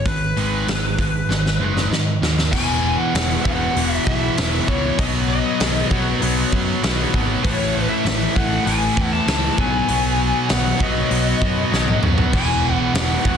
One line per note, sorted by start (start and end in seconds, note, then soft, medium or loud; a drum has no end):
0.05 0.32 G#1 medium
0.05 0.33 G#2 medium
0.05 0.34 D#3 medium
0.05 1.87 B4 medium
0.05 kick loud
0.05 open hi-hat medium
0.37 0.63 G#1 medium
0.37 0.66 G#2 medium
0.37 0.66 D#3 medium
0.37 0.66 G#3 medium
0.37 open hi-hat medium
0.67 1.21 G#1 medium
0.67 0.96 G#2 medium
0.67 0.96 D#3 medium
0.67 snare loud
0.67 open hi-hat medium
0.99 1.27 G#2 medium
0.99 1.27 D#3 medium
0.99 kick medium
0.99 open hi-hat medium
1.29 1.56 G#1 medium
1.29 1.58 G#2 medium
1.29 1.58 D#3 medium
1.29 snare medium
1.46 snare medium
1.59 1.86 F#1 medium
1.59 1.90 G#2 medium
1.59 1.90 D#3 medium
1.59 1.90 G#3 medium
1.77 snare medium
1.90 2.17 G#2 medium
1.90 2.20 G#2 medium
1.90 2.20 D#3 medium
1.90 snare medium
2.22 2.54 D#2 medium
2.22 2.51 G#2 medium
2.22 2.51 D#3 medium
2.22 snare medium
2.39 snare medium
2.51 2.95 E1 medium
2.51 3.14 E2 medium
2.51 3.15 B2 medium
2.51 4.96 E4 medium
2.51 4.96 B4 medium
2.51 4.96 F#5 medium
2.51 2.97 G#5 loud
2.51 kick loud
2.51 crash loud
2.56 3.16 E3 loud
2.97 3.43 F#5 loud
3.14 3.36 E1 medium
3.14 3.45 E2 medium
3.14 3.45 B2 medium
3.14 3.46 E3 medium
3.14 snare loud
3.14 open hi-hat medium
3.44 3.67 E1 medium
3.44 3.75 E2 medium
3.44 3.76 B2 medium
3.44 3.76 E3 loud
3.44 3.93 F#5 loud
3.44 kick medium
3.76 3.97 E1 loud
3.76 4.37 E2 loud
3.76 4.37 B2 loud
3.76 4.38 E3 loud
3.76 open hi-hat medium
3.93 4.04 E5 loud
4.04 4.28 B1 medium
4.04 4.67 E5 medium
4.04 kick medium
4.38 4.59 E1 medium
4.38 4.67 E2 medium
4.38 4.68 B2 medium
4.38 4.68 E3 medium
4.38 snare loud
4.38 open hi-hat medium
4.67 4.89 C#2 medium
4.67 4.97 E2 medium
4.67 4.97 B2 medium
4.67 4.97 E3 medium
4.67 4.99 C#5 medium
4.67 kick medium
4.97 5.41 B1 medium
4.97 5.59 B2 medium
4.97 5.59 F#3 medium
4.97 7.41 B3 medium
4.97 5.60 B3 loud
4.97 7.41 F#4 medium
4.97 7.41 C#5 loud
4.97 5.07 D#5 medium
4.97 kick loud
4.97 open hi-hat medium
5.28 5.86 D#5 medium
5.60 5.82 B1 medium
5.60 5.90 B2 medium
5.60 5.91 F#3 loud
5.60 5.91 B3 loud
5.60 snare loud
5.60 open hi-hat medium
5.91 6.12 B1 medium
5.91 6.20 B2 medium
5.91 6.21 F#3 medium
5.91 6.21 B3 loud
5.91 kick loud
6.21 6.43 B1 medium
6.21 6.82 B2 loud
6.21 6.83 F#3 loud
6.21 6.83 B3 loud
6.21 open hi-hat medium
6.52 6.73 F#2 loud
6.52 kick medium
6.83 7.04 B1 medium
6.83 7.13 B2 medium
6.83 7.13 F#3 medium
6.83 7.14 B3 loud
6.83 snare loud
6.83 open hi-hat medium
7.14 7.35 G#1 medium
7.14 7.43 B2 medium
7.14 7.43 F#3 loud
7.14 7.43 B3 loud
7.14 kick medium
7.43 7.86 A1 loud
7.43 8.04 A2 medium
7.43 8.05 E3 loud
7.43 9.57 A3 medium
7.43 8.05 A3 medium
7.43 9.57 E4 medium
7.43 9.57 B4 medium
7.43 7.89 C#5 medium
7.43 kick loud
7.43 open hi-hat medium
7.89 8.37 E5 medium
8.05 8.26 A1 medium
8.05 8.35 A2 medium
8.05 8.36 E3 loud
8.05 8.37 A3 loud
8.05 snare loud
8.05 open hi-hat medium
8.35 8.57 A1 medium
8.35 8.66 A2 medium
8.35 8.67 E3 medium
8.35 8.67 A3 medium
8.35 8.66 F#5 loud
8.35 kick loud
8.66 8.88 A1 loud
8.66 9.26 A2 loud
8.66 9.27 E3 loud
8.66 9.28 A3 loud
8.66 9.12 G#5 loud
8.66 open hi-hat medium
8.97 9.18 E2 medium
8.97 kick medium
9.13 9.58 A5 loud
9.27 9.48 C#2 loud
9.27 9.56 A2 medium
9.27 9.57 E3 medium
9.27 9.57 A3 loud
9.27 snare loud
9.27 open hi-hat medium
9.58 9.79 B1 medium
9.58 9.87 B2 loud
9.58 9.88 F#3 loud
9.58 12.31 B3 medium
9.58 9.90 B3 loud
9.58 12.31 F#4 medium
9.58 12.31 C#5 medium
9.58 10.50 G#5 loud
9.58 kick loud
9.88 10.31 B1 loud
9.88 10.48 B2 medium
9.88 10.49 F#3 medium
9.88 10.50 B3 loud
9.88 open hi-hat medium
10.49 10.71 B1 medium
10.49 10.79 B2 medium
10.49 10.80 F#3 loud
10.49 10.81 B3 loud
10.49 10.82 F#5 loud
10.49 snare loud
10.49 open hi-hat medium
10.80 11.02 B1 medium
10.80 11.09 B2 medium
10.80 11.10 F#3 medium
10.80 11.11 B3 medium
10.80 12.00 D#5 medium
10.80 kick loud
11.10 11.32 B1 loud
11.10 11.71 B2 medium
11.10 11.71 F#3 loud
11.10 11.73 B3 loud
11.10 open hi-hat medium
11.41 11.63 F#2 medium
11.41 12.02 B2 medium
11.41 12.02 F#3 medium
11.41 13.37 B3 medium
11.41 kick medium
11.72 11.93 B1 medium
11.72 12.01 B2 medium
11.72 12.02 F#3 medium
11.72 12.03 B3 medium
11.72 snare medium
11.88 high tom medium
12.02 12.24 F#2 medium
12.02 12.31 B2 medium
12.02 12.32 F#3 loud
12.02 13.37 B3 medium
12.02 mid tom medium
12.18 floor tom medium
12.33 12.75 E1 medium
12.33 12.93 E2 medium
12.33 12.94 B2 loud
12.33 12.95 E3 loud
12.33 13.37 E4 medium
12.33 13.37 B4 medium
12.33 13.37 F#5 medium
12.33 12.80 G#5 loud
12.33 kick loud
12.33 crash loud
12.80 13.24 F#5 loud
12.94 13.15 E1 medium
12.94 13.23 E2 loud
12.94 13.24 B2 medium
12.94 13.25 E3 medium
12.94 snare loud
12.94 open hi-hat medium
13.24 13.37 E1 medium
13.24 13.37 E2 medium
13.24 13.37 B2 medium
13.24 13.37 E3 medium
13.24 13.37 F#5 loud
13.24 kick medium